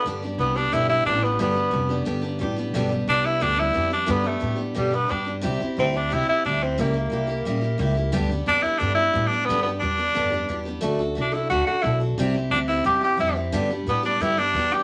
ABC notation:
X:1
M:4/4
L:1/16
Q:1/4=178
K:Gmix
V:1 name="Tenor saxophone"
z4 B,2 D2 E2 E2 D2 B,2 | B,8 z8 | z4 D2 E2 D2 E4 D2 | B,2 A,4 z2 G,2 B,2 D3 z |
z4 C2 D2 E2 E2 D2 C2 | ^A,8 z8 | z4 D2 E2 D2 E4 D2 | B,2 B,2 D8- D2 z2 |
z4 D2 E2 ^F2 F2 E2 z2 | z4 D2 E2 G2 G2 E2 z2 | z4 B,2 D2 E2 D4 G2 |]
V:2 name="Steel-string acoustic guitar"
[G,,D,G,B,DG]2 [G,B,DG]2 [G,B,DG]2 [G,B,DG]2 [G,,D,G,B,DG]2 [G,B,DG]2 [G,B,DG]2 [G,B,DG]2 | [G,,D,G,B,DG]2 [G,B,DG]2 [G,B,DG]2 [G,B,DG]2 [G,,D,G,B,DG]2 [G,B,DG]2 [G,B,DG]2 [G,B,DG]2 | [G,,D,G,B,DG]2 [G,B,DG]2 [G,B,DG]2 [G,B,DG]2 [G,,D,G,B,DG]2 [G,B,DG]2 [G,B,DG]2 [G,B,DG]2 | [G,,D,G,B,DG]2 [G,B,DG]2 [G,B,DG]2 [G,B,DG]2 [G,,D,G,B,DG]2 [G,B,DG]2 [G,B,DG]2 [G,B,DG]2 |
[C,G,CEG]2 [CEG]2 [G,CEG]2 [CEG]2 [C,G,CEG]2 [CEG]2 [G,CEG]2 [CEG]2 | [^C,G,^A,EG]2 [A,EG]2 [G,A,EG]2 [A,EG]2 [C,G,A,EG]2 [A,EG]2 [G,A,EG]2 [A,EG]2 | [G,,D,G,B,DG]2 [G,B,DG]2 [G,B,DG]2 [G,B,DG]2 [G,,D,G,B,DG]2 [B,D]2 [G,B,DG]2 [G,B,DG]2 | [G,,D,G,B,DG]2 [G,B,DG]2 [G,B,DG]2 [G,B,DG]2 [G,,D,G,B,DG]2 [G,B,DG]2 [G,B,DG]2 [G,B,DG]2 |
[D,A,D^FA]2 [DFA]2 [A,DFA]2 [DFA]2 [D,A,DFA]2 [DF]2 [A,DFA]2 [DFA]2 | [C,G,CEG]2 [CEG]2 [G,CEG]2 [CEG]2 [C,G,CEG]2 [CEG]2 [G,CEG]2 [CEG]2 | [G,,D,G,B,DG]2 [G,B,DG]2 [G,B,DG]2 [G,B,DG]2 [G,,D,G,B,DG]2 [G,B,DG]2 [G,B,DG]2 [G,B,DG]2 |]
V:3 name="Upright bass" clef=bass
G,,4 C,,4 B,,,4 A,,,4 | G,,,4 F,,,4 G,,,4 A,,,4 | B,,,4 C,,4 D,,4 F,,4 | G,,4 A,,4 B,,4 G,,4 |
C,,2 z2 D,,4 C,,2 z2 D,,4 | ^C,,4 =C,,4 ^A,,,4 ^C,,4 | D,,4 F,,2 z2 G,,4 A,,4 | G,,4 E,,4 F,,4 E,,4 |
D,,4 C,,4 D,,2 z2 B,,,4 | C,,4 D,,4 E,,4 F,,4 | G,,4 A,,4 G,,4 E,,4 |]